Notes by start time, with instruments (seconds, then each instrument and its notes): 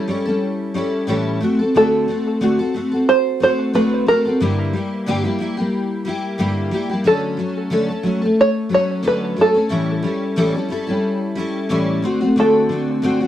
Already playing: five-string banjo A4
0.08 steel-string acoustic guitar G3 C#4 E4 A4
0.25 steel-string acoustic guitar G3 C#4 E4 A4
0.74 steel-string acoustic guitar G3 C#4 E4 A4
1.07 steel-string acoustic guitar A2 E3 G3 C#4 E4 A4
1.41 steel-string acoustic guitar A3 C4 F#4 A4
1.59 steel-string acoustic guitar C4 F#4 A4
1.75 steel-string acoustic guitar D3 A3 C4 F#4 A4, five-string banjo A4
2.08 steel-string acoustic guitar A3 C4 F#4 A4
2.41 steel-string acoustic guitar D3 A3 C4 F#4 A4
2.59 steel-string acoustic guitar C4 F#4 A4
2.74 steel-string acoustic guitar A3 C4 F#4 A4
2.92 steel-string acoustic guitar F#4 A4
2.96 steel-string acoustic guitar C4
3.09 five-string banjo C5
3.40 steel-string acoustic guitar A3 C4 F#4 A4, five-string banjo C5
3.73 steel-string acoustic guitar D3 A3 C4 F#4 A4, five-string banjo B4
4.06 steel-string acoustic guitar A3 C4 F#4 A4, five-string banjo A#4
4.25 steel-string acoustic guitar C4 F#4 A4
4.40 steel-string acoustic guitar G2 D3 G3 A#3 E4 G4
4.73 steel-string acoustic guitar G3 A#3 E4 G4
5.06 steel-string acoustic guitar G2 D3 G3 A#3 E4 G4
5.24 steel-string acoustic guitar G3 A#3 E4 G4
5.38 steel-string acoustic guitar G3 A#3 E4 G4
5.57 steel-string acoustic guitar G3 A#3 E4 G4
6.05 steel-string acoustic guitar G3 A#3 E4
6.09 steel-string acoustic guitar G4
6.38 steel-string acoustic guitar G2 D3 G3 A#3 E4 G4
6.71 steel-string acoustic guitar G3 A#3 E4 G4
6.89 steel-string acoustic guitar G3 A#3 E4 G4
7.04 steel-string acoustic guitar D3 F#3 A3 C#4 A4, five-string banjo A4
7.37 steel-string acoustic guitar F#3 A3 C#4 A4
7.70 steel-string acoustic guitar D3 F#3 A3 C#4 A4
7.88 steel-string acoustic guitar A3 C#4 A4
8.03 steel-string acoustic guitar F#3 A3 C#4 A4
8.21 steel-string acoustic guitar A3 C#4 A4
8.41 five-string banjo C#5
8.69 steel-string acoustic guitar F#3 A3 C#4 A4
8.74 five-string banjo C#5
9.03 steel-string acoustic guitar D3 F#3 A3 C#4 A4
9.08 five-string banjo B4
9.36 steel-string acoustic guitar F#3 A3 C#4 A4
9.41 five-string banjo A4
9.54 steel-string acoustic guitar A3 C#4 A4
9.69 steel-string acoustic guitar A2 E3 G3 C#4 E4 A4
10.03 steel-string acoustic guitar G3 C#4 E4 A4
10.36 steel-string acoustic guitar A2 E3 G3 C#4 E4 A4
10.54 steel-string acoustic guitar G3 C#4 E4 A4
10.69 steel-string acoustic guitar G3 C#4 E4 A4
10.87 steel-string acoustic guitar G3 C#4 E4 A4
11.35 steel-string acoustic guitar G3 C#4 E4 A4
11.69 steel-string acoustic guitar A2 E3 G3 C#4 E4 A4
12.02 steel-string acoustic guitar D3 A3 C4 F#4
12.21 steel-string acoustic guitar A3 C4 F#4
12.36 steel-string acoustic guitar D3 A3 C4 F#4, five-string banjo A4
12.69 steel-string acoustic guitar D3 A3 C4 F#4
13.02 steel-string acoustic guitar D3 A3 C4 F#4
13.21 steel-string acoustic guitar C4 F#4